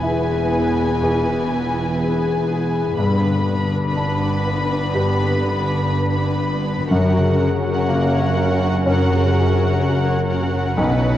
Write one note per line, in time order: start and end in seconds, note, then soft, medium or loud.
0.00 2.93 E1 soft
0.00 1.00 E2 soft
0.00 2.93 E2 soft
0.00 1.25 B2 soft
0.00 1.50 B3 soft
0.00 2.94 B3 soft
0.00 0.77 E4 soft
0.00 2.94 E4 soft
0.00 1.61 E4 soft
0.00 0.51 G#4 soft
0.00 0.27 B4 soft
0.00 2.94 B4 soft
0.00 2.94 G#5 soft
0.28 2.23 B4 soft
0.53 1.98 G#4 soft
0.78 1.74 E4 soft
1.02 3.01 E2 soft
1.02 2.94 G#4 soft
1.02 2.94 B4 soft
1.26 3.01 B2 soft
1.51 3.46 B3 soft
1.75 2.71 E4 soft
1.99 2.46 G#4 soft
2.24 3.95 B4 soft
2.48 3.01 G#4 soft
2.73 3.01 E4 soft
2.96 6.87 G1 soft
2.96 4.94 G2 soft
2.96 6.88 G2 soft
2.96 6.87 B3 soft
2.96 6.87 D4 soft
2.96 6.88 B4 soft
2.96 6.88 B5 soft
3.23 5.19 D3 soft
3.47 5.43 B3 soft
3.72 4.22 D4 soft
3.96 5.55 D4 soft
3.96 4.46 B4 soft
4.23 4.71 D4 soft
4.47 5.92 B4 soft
4.72 5.68 D4 soft
4.95 6.95 G2 soft
4.95 6.87 G4 soft
4.95 6.87 B4 soft
5.21 6.96 D3 soft
5.44 6.95 B3 soft
5.69 6.16 D4 soft
5.93 6.41 B4 soft
6.18 6.65 D4 soft
6.42 6.95 B4 soft
6.66 6.95 D4 soft
6.91 10.74 F#1 soft
6.91 10.74 F#2 soft
6.91 8.84 F#2 soft
6.91 10.74 C#4 soft
6.91 10.75 F#4 soft
6.91 10.74 A#4 soft
6.91 10.74 F#5 soft
7.17 9.08 C#3 soft
7.41 9.32 C#4 soft
7.65 8.60 F#4 soft
7.89 9.43 A#3 soft
7.89 8.36 A#4 soft
8.14 10.04 C#5 soft
8.37 9.80 A#4 soft
8.61 9.56 F#4 soft
8.86 10.83 F#2 soft
8.86 10.75 C#4 soft
8.86 10.75 C#5 soft
9.09 10.83 C#3 soft
9.33 11.18 C#4 soft
9.57 10.53 F#4 soft
9.81 10.28 A#4 soft
10.06 11.18 C#5 soft
10.30 10.82 A#4 soft
10.54 11.18 F#4 soft
10.77 11.18 B1 soft
10.77 11.18 B1 medium
10.77 11.18 B2 soft
10.77 11.18 B2 medium
10.77 11.18 C#4 medium
10.77 11.18 D#4 medium
10.77 11.18 B4 soft
10.77 11.18 F#5 soft
11.03 11.18 F#3 soft